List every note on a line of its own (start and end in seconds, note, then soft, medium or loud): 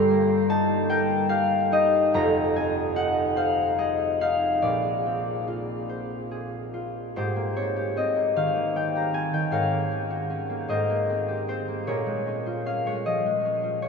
0.00 2.16 G1 medium
0.00 2.17 G2 medium
0.00 1.94 D4 medium
0.00 1.28 G4 medium
0.00 0.89 A#4 medium
0.00 2.17 D5 medium
0.00 0.88 G5 loud
0.00 2.13 A#5 loud
0.11 2.17 A#3 medium
0.49 1.71 D#4 medium
0.49 1.16 A5 loud
0.90 2.18 A#4 medium
0.90 2.17 G5 loud
1.29 2.17 G4 medium
1.29 2.01 F5 loud
1.72 2.94 D#4 medium
1.72 3.77 D#5 loud
2.14 4.66 F1 medium
2.14 4.67 F2 medium
2.14 2.84 A#5 loud
2.56 5.05 C4 medium
2.56 6.46 G#5 medium
2.96 4.20 D#4 medium
2.96 3.66 F#5 loud
3.36 5.88 C5 medium
3.36 4.20 F5 loud
3.78 6.30 G#4 medium
3.78 4.66 D#5 medium
4.21 4.66 D#4 medium
4.21 7.19 F5 loud
4.62 7.18 A#1 medium
4.62 7.19 A#2 medium
4.62 7.19 D5 medium
5.06 7.55 C4 medium
5.47 6.73 F4 medium
5.89 7.16 C5 medium
6.31 7.17 G#4 soft
6.74 7.19 F4 medium
7.16 9.50 G#2 medium
7.16 7.75 G4 medium
7.16 9.56 G#4 medium
7.16 9.55 C5 medium
7.36 8.15 A#3 medium
7.56 7.96 C4 soft
7.56 8.24 C#5 medium
7.76 8.94 G4 medium
7.96 8.74 C4 medium
7.96 9.55 D#5 medium
8.16 8.55 A#3 soft
8.36 9.32 D#3 medium
8.36 9.02 F5 medium
8.56 9.70 A#3 soft
8.76 9.13 C4 medium
8.76 9.33 G5 medium
8.95 9.55 G4 medium
8.95 9.28 A#5 medium
9.13 9.55 C4 medium
9.13 9.55 G#5 medium
9.33 9.55 D#3 soft
9.33 9.66 G5 medium
9.51 10.68 G#2 medium
9.51 10.69 A#4 medium
9.51 10.72 C#5 medium
9.51 10.71 F5 medium
9.71 10.48 A#3 soft
9.91 10.29 C#4 soft
10.10 10.72 F#4 medium
10.30 10.72 C#4 medium
10.50 10.88 A#3 soft
10.68 11.90 G#2 medium
10.68 11.87 A#4 medium
10.68 11.48 C5 medium
10.68 11.90 D#5 medium
10.90 11.67 A#3 soft
11.10 11.47 C4 soft
11.28 11.90 G4 soft
11.48 11.90 C4 medium
11.48 11.90 C5 medium
11.68 13.89 A#3 soft
11.87 13.89 A#2 medium
11.87 13.89 G#4 medium
11.87 13.89 A#4 medium
11.87 12.86 C#5 medium
12.06 12.85 G#3 medium
12.27 12.65 C#4 soft
12.46 13.62 F4 medium
12.66 13.44 C#4 medium
12.66 13.89 F5 medium
12.86 13.25 G#3 soft
12.86 13.19 C#5 medium
13.06 13.89 F3 soft
13.06 13.89 D#5 medium
13.26 13.89 G#3 soft
13.45 13.82 C#4 soft
13.63 13.89 F4 soft
13.82 13.89 C#4 medium
13.82 13.89 C#5 medium